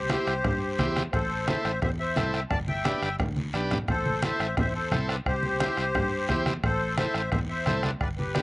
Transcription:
Already playing: C2 G4 C5
0.09 E4 G4 C5, bombo rim, high conga, short guiro
0.27 C2, bombo rim, short guiro
0.44 G2, bombo low, bombo rim, high conga, low conga, long guiro
0.78 E2 E4 G4 C5, bombo low, bombo rim, high conga, short guiro
0.96 bombo rim, high conga, short guiro
1.12 A1 A4 C5, bombo low, bombo rim, high conga, low conga, long guiro
1.46 E4 A4 C5 E5, bombo rim, high conga, short guiro
1.65 A1, bombo rim, short guiro
1.81 E2 C5 E5, bombo low, bombo rim, high conga, low conga, long guiro
1.99 C5 E5
2.16 C2 E4 A4 C5, bombo rim, high conga, low conga, short guiro
2.33 E5 G5, bombo rim, short guiro
2.50 G1 D5 A5, bombo low, bombo rim, high conga, low conga, long guiro
2.68 E5 G5, high conga
2.84 D4 G4 B4, bombo rim, high conga, short guiro
3.02 G1, bombo rim, short guiro
3.19 D2, bombo low, bombo rim, high conga, low conga, long guiro
3.36 high conga
3.53 B1 D4 G4 B4, bombo rim, short guiro
3.71 bombo rim, low conga, short guiro
3.88 A1 A4 C5, bombo low, bombo rim, high conga, low conga, long guiro
4.06 high conga
4.22 E4 A4 C5 E5, bombo rim, high conga, short guiro
4.40 A1, bombo rim, short guiro
4.57 E2 C5 E5, bombo low, bombo rim, high conga, low conga, long guiro
4.75 A4 C5
4.91 C2 E4 A4 C5, bombo rim, high conga, low conga, short guiro
5.09 B4 D5, bombo rim, short guiro
5.26 C2 G4 C5, bombo low, bombo rim, high conga, long guiro
5.43 high conga
5.60 E4 G4 C5, bombo rim, high conga, short guiro
5.77 C2, bombo rim, short guiro
5.95 G2, bombo low, bombo rim, high conga, low conga, long guiro
6.29 E2 E4 G4 C5, bombo low, bombo rim, high conga, short guiro
6.46 bombo rim, high conga, short guiro
6.63 A1 A4 C5, bombo low, bombo rim, high conga, low conga, long guiro
6.98 E4 A4 C5 E5, bombo rim, high conga, short guiro
7.14 A1, bombo rim, short guiro
7.32 E2 C5 E5, bombo low, bombo rim, high conga, low conga, long guiro
7.49 C5 E5
7.66 C2 E4 A4 C5, bombo rim, high conga, low conga, short guiro
7.83 B4 D5, bombo rim, high conga, short guiro
8.01 G1 B4 D5, bombo low, bombo rim, high conga, long guiro
8.18 G4 B4, high conga
8.35 D4 G4 B4, bombo rim, high conga, short guiro

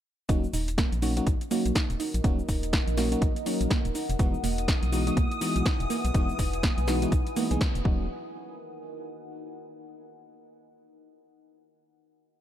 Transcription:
0.29 D#1 F#3 A#3 C#4 D#4 F#4, kick, closed hi-hat, shaker
0.44 shaker
0.53 D#1 D#4, open hi-hat, shaker
0.68 closed hi-hat, shaker
0.78 A#3, kick, snare, closed hi-hat, shaker
0.84 A#4
0.92 A#1, closed hi-hat, shaker
0.99 F#3 A#3 C#4 D#4 F#4 D#5, open hi-hat, shaker
1.17 F#3 A#3 C#4 D#4 F#4, closed hi-hat, shaker
1.27 A#1 D#4, kick, closed hi-hat, shaker
1.41 closed hi-hat, shaker
1.51 F#3 A#3 C#4 D#4 F#4, open hi-hat, shaker
1.66 A#1, closed hi-hat, shaker
1.75 D#4, kick, snare, closed hi-hat, shaker
1.90 D#1, closed hi-hat, shaker
1.95 F#5
2.00 D#4, open hi-hat, shaker
2.14 A#1, closed hi-hat, shaker
2.24 D#1 F#3 A#3 C#4 D#4 F#4, kick, closed hi-hat, shaker
2.39 shaker
2.49 D#1 D#4, kick, open hi-hat, shaker
2.63 closed hi-hat, shaker
2.73 D#4, kick, snare, closed hi-hat, shaker
2.88 A#1, closed hi-hat, shaker
2.97 F#3 A#3 C#4 D#4 F#4, snare, open hi-hat, shaker
3.12 F#3 A#3 C#4 D#4 F#4, closed hi-hat, shaker
3.22 A#1 D#4, kick, closed hi-hat, shaker
3.36 closed hi-hat, shaker
3.46 F#3 A#3 C#4 D#4 F#4, open hi-hat, shaker
3.61 A#1, closed hi-hat, shaker
3.71 A#3, kick, snare, closed hi-hat, shaker
3.85 D#1, closed hi-hat, shaker
3.95 D#4 E4, open hi-hat, shaker
4.09 E1, closed hi-hat, shaker
4.19 E1 E3 G#3 B3 D#4 F#4 D#6, kick, closed hi-hat, shaker
4.24 B4
4.34 shaker
4.44 E1 A#3, open hi-hat, shaker
4.52 G#5
4.58 closed hi-hat, shaker
4.68 D#4, kick, snare, closed hi-hat, shaker
4.83 B1, closed hi-hat, shaker
4.92 E3 G#3 B3 D#4 F#4, open hi-hat, shaker
5.07 E3 G#3 B3 D#4 F#4, closed hi-hat, shaker
5.17 B1 A#3, kick, closed hi-hat, shaker
5.31 closed hi-hat, shaker
5.41 E3 G#3 B3 D#4 F#4, open hi-hat, shaker
5.56 B1, closed hi-hat, shaker
5.66 D#4, kick, snare, closed hi-hat, shaker
5.80 E1, closed hi-hat, shaker
5.90 A#3, open hi-hat, shaker
6.05 B1, closed hi-hat, shaker
6.14 E1 E3 G#3 B3 D#4 F#4, kick, closed hi-hat, shaker
6.29 shaker
6.39 E1 D#4, kick, open hi-hat, shaker
6.53 closed hi-hat, shaker
6.63 A#3, kick, snare, closed hi-hat, shaker
6.78 B1, closed hi-hat, shaker
6.87 E3 G#3 B3 D#4 F#4, snare, open hi-hat, shaker
7.02 E3 G#3 B3 D#4 F#4, closed hi-hat, shaker
7.12 B1 D#4, kick, closed hi-hat, shaker
7.27 closed hi-hat, shaker
7.36 E3 G#3 A#3 B3 D#4 F#4, open hi-hat, shaker
7.51 B1 E3 G#3 B3 D#4 G#4, closed hi-hat, shaker
7.61 D#4, kick, snare, closed hi-hat, shaker
7.75 E1, closed hi-hat, shaker
7.84 D#1 F#3 A#3 C#4 D#4 F#4, kick
7.94 A#4
8.26 D#5
8.32 F#5

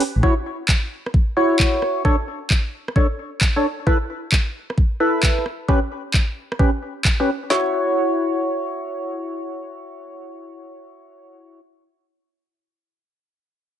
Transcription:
0.00 open hi-hat
0.15 A1
0.23 E4 F#4 C#5, kick
0.69 kick, clap
1.06 cross-stick
1.14 kick
1.37 E4 F#4 C#5
1.59 kick, clap
1.75 cross-stick
1.82 cross-stick
2.05 D4 A4 C#5, kick
2.50 kick, clap
2.88 cross-stick
2.96 D4 A4 C#5, kick
3.41 kick, clap
3.56 D4 A4 C#5
3.87 E4 A4 B4, kick
4.32 kick, clap
4.70 cross-stick
4.78 kick
5.00 E4 A4 B4
5.23 kick, clap
5.38 cross-stick
5.46 cross-stick
5.68 C#4 G4 B4, kick
6.14 kick, clap
6.52 cross-stick
6.59 C#4 G4 B4, kick
7.05 kick, clap
7.20 C#4 G4 B4, cross-stick
7.50 E4 F#4 C#5, snare

